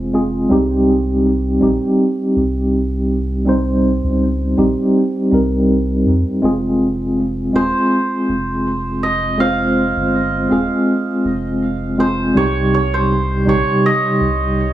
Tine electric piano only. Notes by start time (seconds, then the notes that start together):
Already playing: G#3 C4 F4 G#4
0.13 G#3 C4 F4 G#4
0.49 G3 C4 D#4 G4
1.60 G3 C4 D#4 G4
3.46 G3 C4 D#4 C5
4.57 G3 C4 D#4 G4
5.31 G3 C4 D#4 A#4
6.42 G#3 C4 F4 G#4
7.53 G#3 C4 F4 G#4
9.38 G#3 C4 F4 C5
10.49 G#3 C4 F4 G#4
11.98 G#3 C4 F4 G#4
12.34 C3 G3 D#4 G4
13.45 C3 G3 D#4 G4